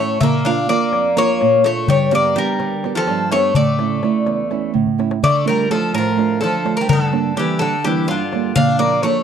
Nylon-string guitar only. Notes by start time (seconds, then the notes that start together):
Already playing: A2
0.00 A3 C#4 E4
0.21 A#2
0.45 A#3 D4 F4
0.69 A#3 D4 F4
0.94 F2
1.16 A#3 D4 F4
1.41 A#2
1.64 A#3 D4 F4
1.88 G2
2.12 B3 D4 G4
2.36 B3 D4 G4
2.60 D3
2.84 B3 D4 G4
3.09 G2
3.32 B3 D4 G4
3.56 A2
3.79 C#3 A3 E4
4.03 C#3 A3 E4
4.27 E2
4.50 A3 C#4 E4
4.74 A2
4.98 A3 C#4 E4
5.23 D3
5.45 A3 D4 F4
5.69 A3 D4 F4
5.93 A2
6.17 A3 D4 F4
6.41 D3
6.65 A3 D4 F4
6.89 G2
7.12 G3 A#3 D4
7.36 G3 A#3 D4
7.61 D3
7.84 G3 A#3 D4
8.09 G2
8.33 G3 A#3 D4
8.57 A#2
8.79 F3 A#3 D4
9.03 F3 A#3 D4